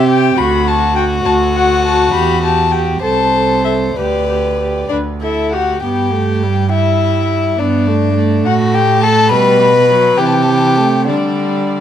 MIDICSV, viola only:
0, 0, Header, 1, 2, 480
1, 0, Start_track
1, 0, Key_signature, 1, "major"
1, 0, Tempo, 587659
1, 303, Time_signature, 6, 3, 24, 8
1, 2225, Tempo, 617920
1, 5105, Tempo, 578035
1, 7985, Tempo, 597610
1, 9514, End_track
2, 0, Start_track
2, 0, Title_t, "Viola"
2, 0, Program_c, 0, 41
2, 63, Note_on_c, 0, 67, 47
2, 293, Note_off_c, 0, 67, 0
2, 298, Note_on_c, 0, 66, 56
2, 534, Note_off_c, 0, 66, 0
2, 539, Note_on_c, 0, 66, 42
2, 774, Note_off_c, 0, 66, 0
2, 783, Note_on_c, 0, 66, 46
2, 1011, Note_off_c, 0, 66, 0
2, 1016, Note_on_c, 0, 66, 45
2, 1253, Note_off_c, 0, 66, 0
2, 1260, Note_on_c, 0, 66, 38
2, 1495, Note_off_c, 0, 66, 0
2, 1499, Note_on_c, 0, 66, 41
2, 1735, Note_off_c, 0, 66, 0
2, 1742, Note_on_c, 0, 67, 50
2, 1978, Note_off_c, 0, 67, 0
2, 1990, Note_on_c, 0, 67, 36
2, 2225, Note_off_c, 0, 67, 0
2, 2231, Note_on_c, 0, 67, 42
2, 2458, Note_off_c, 0, 67, 0
2, 2467, Note_on_c, 0, 69, 38
2, 2697, Note_off_c, 0, 69, 0
2, 2715, Note_on_c, 0, 69, 38
2, 2941, Note_off_c, 0, 69, 0
2, 2945, Note_on_c, 0, 69, 31
2, 3182, Note_off_c, 0, 69, 0
2, 3203, Note_on_c, 0, 67, 43
2, 3434, Note_off_c, 0, 67, 0
2, 3443, Note_on_c, 0, 67, 30
2, 3673, Note_off_c, 0, 67, 0
2, 3678, Note_on_c, 0, 67, 31
2, 3912, Note_off_c, 0, 67, 0
2, 3930, Note_on_c, 0, 71, 38
2, 3992, Note_off_c, 0, 71, 0
2, 4166, Note_on_c, 0, 69, 36
2, 4403, Note_on_c, 0, 67, 33
2, 4415, Note_off_c, 0, 69, 0
2, 4639, Note_off_c, 0, 67, 0
2, 4642, Note_on_c, 0, 59, 38
2, 4866, Note_on_c, 0, 57, 34
2, 4878, Note_off_c, 0, 59, 0
2, 5108, Note_on_c, 0, 55, 40
2, 5120, Note_off_c, 0, 57, 0
2, 5350, Note_off_c, 0, 55, 0
2, 5354, Note_on_c, 0, 55, 33
2, 6055, Note_off_c, 0, 55, 0
2, 6069, Note_on_c, 0, 59, 46
2, 6304, Note_on_c, 0, 57, 44
2, 6316, Note_off_c, 0, 59, 0
2, 6531, Note_off_c, 0, 57, 0
2, 6536, Note_on_c, 0, 57, 54
2, 7490, Note_on_c, 0, 55, 59
2, 7502, Note_off_c, 0, 57, 0
2, 7726, Note_off_c, 0, 55, 0
2, 7731, Note_on_c, 0, 55, 48
2, 7798, Note_off_c, 0, 55, 0
2, 7978, Note_on_c, 0, 54, 50
2, 8212, Note_on_c, 0, 52, 47
2, 8224, Note_off_c, 0, 54, 0
2, 8447, Note_off_c, 0, 52, 0
2, 8452, Note_on_c, 0, 52, 47
2, 8689, Note_on_c, 0, 57, 40
2, 8701, Note_off_c, 0, 52, 0
2, 8933, Note_on_c, 0, 55, 40
2, 8945, Note_off_c, 0, 57, 0
2, 9514, Note_off_c, 0, 55, 0
2, 9514, End_track
0, 0, End_of_file